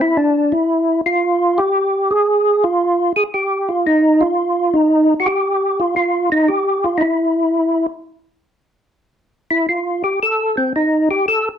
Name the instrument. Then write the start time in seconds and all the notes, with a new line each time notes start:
tonewheel organ
0.01 E4
0.17 D4
0.52 E4
1.06 F4
1.58 G4
2.11 G#4
2.64 F4
3.16 G#4
3.34 G4
3.69 F4
3.87 D#4
4.21 F4
4.74 D#4
5.20 F#4
5.26 G4
5.80 F4
5.96 F4
6.32 D#4
6.48 G4
6.84 F4
6.98 D#4 E4
9.51 E4
9.69 F4
10.04 G4
10.23 A4
10.57 C4
10.76 D#4
11.11 G4
11.28 A4